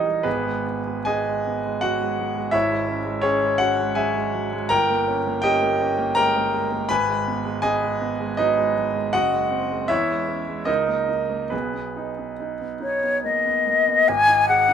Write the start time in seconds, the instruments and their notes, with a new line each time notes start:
Already playing: grand piano A#1 E3 G3 C#4 D#4 A#4 C#5 D#5
0.07 grand piano G3
0.23 grand piano G#1 B3 G#4 B4
0.46 grand piano G#3
0.67 grand piano B3
0.87 grand piano G#3
1.05 grand piano B3 G#4 D#5 G#5
1.28 grand piano G#3
1.46 grand piano B3
1.66 grand piano G#3
1.81 grand piano F#3 F#4 F#5
2.01 grand piano G#3
2.19 grand piano F#3
2.36 grand piano G#3
2.51 grand piano G#1 E4 C#5 E5
2.71 grand piano G#3
2.89 grand piano C#4
3.05 grand piano G#3
3.21 grand piano C#4 G#4 C#5
3.42 grand piano G#3
3.58 grand piano C#4 F#4 F#5
3.79 grand piano G#3
3.95 grand piano F#3 G#4 E5 G#5
4.15 grand piano G#3
4.35 grand piano F#3
4.53 grand piano G#3
4.69 grand piano G1 A#4 G5 A#5
4.90 grand piano A#3
5.08 grand piano C#4
5.27 grand piano A#3
5.42 grand piano C#4 G4 D#5 G5
5.62 grand piano A#3
5.81 grand piano C#4
5.98 grand piano A#3
6.15 grand piano G#3 A#4 G5 A#5
6.36 grand piano A#3
6.54 grand piano G#3
6.72 grand piano A#3
6.89 grand piano G#1 B4 G#5 B5
7.09 grand piano G#3
7.27 grand piano B3
7.45 grand piano G#3
7.62 grand piano B3 G#4 D#5 G#5
7.83 grand piano G#3
8.01 grand piano B3
8.20 grand piano G#3
8.37 grand piano F#3 D#4 B4 D#5
8.57 grand piano G#3
8.77 grand piano F#3
8.94 grand piano G#3
9.13 grand piano F#1 F#4 D#5 F#5
9.32 grand piano G#3
9.50 grand piano C4
9.71 grand piano G#3
9.88 grand piano E2 E4 C#5 E5
10.10 grand piano G#3
10.29 grand piano C#4
10.48 grand piano G#3
10.65 grand piano C#2 D#4 A#4 D#5
10.88 grand piano A#3
11.09 grand piano D#4
11.30 grand piano A#3
11.50 grand piano B1 B3 G#4 B4
11.74 grand piano B3
11.96 grand piano D#4
12.18 grand piano B3
12.40 grand piano D#4
12.61 grand piano B3
12.80 grand piano D#4, flute C#5
13.03 grand piano B3
13.24 grand piano A#3, flute D#5
13.46 grand piano B3
13.67 grand piano A#3
13.88 grand piano B3
14.08 grand piano G#1, flute G#5
14.28 grand piano D#4
14.49 grand piano G#4, flute F#5
14.69 grand piano D#4